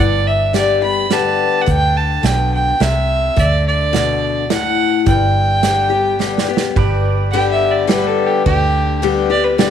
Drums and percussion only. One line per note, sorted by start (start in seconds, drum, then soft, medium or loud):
0.54 snare medium
0.54 closed hi-hat medium
1.11 snare medium
1.11 closed hi-hat medium
1.68 kick medium
1.68 closed hi-hat medium
2.24 snare medium
2.24 closed hi-hat medium
2.81 snare medium
2.81 closed hi-hat medium
3.37 kick loud
3.37 closed hi-hat medium
3.94 snare medium
3.94 closed hi-hat medium
4.50 snare medium
4.50 closed hi-hat medium
5.06 kick loud
5.06 closed hi-hat medium
5.63 snare medium
5.63 closed hi-hat medium
6.20 snare medium
6.38 snare medium
6.57 snare medium
6.76 kick loud
6.76 ride medium
7.33 ride medium
7.89 snare medium
7.89 ride medium
8.46 kick loud
8.46 ride medium
9.03 ride medium
9.59 snare medium
9.59 ride medium